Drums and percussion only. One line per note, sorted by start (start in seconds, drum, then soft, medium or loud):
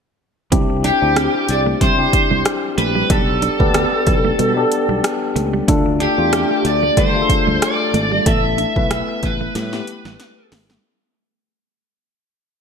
0.52 kick loud
0.52 closed hi-hat medium
0.84 closed hi-hat medium
1.16 cross-stick loud
1.16 closed hi-hat medium
1.49 closed hi-hat medium
1.81 kick medium
1.81 closed hi-hat medium
2.13 kick medium
2.13 closed hi-hat medium
2.45 cross-stick loud
2.45 closed hi-hat medium
2.78 closed hi-hat medium
3.10 kick loud
3.10 closed hi-hat medium
3.42 closed hi-hat medium
3.60 kick medium
3.74 cross-stick loud
3.74 closed hi-hat medium
4.07 kick medium
4.07 closed hi-hat medium
4.39 closed hi-hat medium
4.72 closed hi-hat medium
5.04 cross-stick loud
5.04 closed hi-hat medium
5.36 closed hi-hat medium
5.68 kick loud
5.68 closed hi-hat medium
6.00 closed hi-hat medium
6.33 cross-stick loud
6.33 closed hi-hat medium
6.65 closed hi-hat medium
6.97 kick medium
6.97 closed hi-hat medium
7.29 kick medium
7.29 closed hi-hat medium
7.62 cross-stick loud
7.62 closed hi-hat medium
7.94 closed hi-hat medium
8.26 kick loud
8.26 closed hi-hat medium
8.58 closed hi-hat medium
8.76 kick medium
8.91 cross-stick loud
8.91 closed hi-hat medium
9.23 kick medium
9.23 closed hi-hat medium
9.55 snare soft
9.55 closed hi-hat medium
9.73 snare soft
9.87 closed hi-hat medium
10.05 snare medium
10.20 snare medium
10.20 closed hi-hat medium
10.52 snare medium
10.52 open hi-hat medium
10.70 snare medium